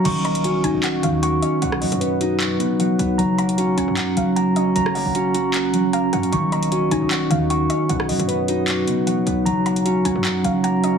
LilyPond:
<<
  \new Staff \with { instrumentName = "Synth pluck" } { \time 4/4 \key ees \minor \tempo 4 = 153 r8 bes''4 aes''8 ges''8 f''8 ges''8 ees''8 | r1 | r8 bes''4 aes''8 ges''8 f''8 ges''8 ees''8 | r2. f''8 ges''8 |
r8 bes''4 aes''8 ges''8 f''8 ges''8 ees''8 | r1 | r8 bes''4 aes''8 ges''8 f''8 ges''8 ees''8 | }
  \new Staff \with { instrumentName = "Tine electric piano" } { \time 4/4 \key ees \minor des'''8 ees''8 ges'8 ees'4 ees8 des'''4 | fis''8 dis''8 b'8 fis'4 b8 fis''4 | bes''8 ges''8 ges'8 des'4 ges8 bes''4 | bes''8 ges''8 ges'8 des'4 ges8 bes''4 |
des'''8 ees''8 ges'8 ees'4 ees8 des'''4 | fis''8 dis''8 b'8 fis'4 b8 fis''4 | bes''8 ges''8 ges'8 des'4 ges8 bes''4 | }
  \new Staff \with { instrumentName = "Harp" } { \time 4/4 \key ees \minor ees8 bes8 des'8 ees'8 ges'8 ees8 bes8 des'8 | b,8 fis8 b8 dis'8 fis'8 b,8 fis8 b8 | ges8 bes8 des'8 ges'8 ges''8 ges8 bes8 des'8 | ges8 bes8 des'8 ges'8 ges''8 ges8 bes8 des'8 |
ees8 bes8 des'8 ees'8 ges'8 ees8 bes8 des'8 | b,8 fis8 b8 dis'8 fis'8 b,8 fis8 b8 | ges8 bes8 des'8 ges'8 ges''8 ges8 bes8 des'8 | }
  \new Staff \with { instrumentName = "808-style bass" } { \clef bass \time 4/4 \key ees \minor ees,,4. ees,,16 ees,,8. ees,4 r8 | b,,8 fis,16 fis,4.~ fis,16 r4 b,,8 | ges,,4. ges,,16 ges,8. ges,,4. | ges,,8. ges,,2~ ges,,8. ges,8 |
ees,,4. ees,,16 ees,,8. ees,4 r8 | b,,8 fis,16 fis,4.~ fis,16 r4 b,,8 | ges,,4. ges,,16 ges,8. ges,,4. | }
  \new DrumStaff \with { instrumentName = "Drums" } \drummode { \time 4/4 <cymc hh>8 hh16 hh16 hh8 hh8 <hc hh>8 hh8 hh8 hh8 | hh16 ss16 <hh hho>16 hh16 hh8 hh8 <hc hh>8 hh8 hh8 hh8 | hh8 hh16 hh16 hh8 hh8 <hc hh>8 hh8 hh8 hh8 | hh16 ss16 hho8 hh8 hh8 <hc hh>8 hh8 hh8 hh16 hh16 |
hh8 hh16 hh16 hh8 hh8 <hc hh>8 hh8 hh8 hh8 | hh16 ss16 <hh hho>16 hh16 hh8 hh8 <hc hh>8 hh8 hh8 hh8 | hh8 hh16 hh16 hh8 hh8 <hc hh>8 hh8 hh8 hh8 | }
>>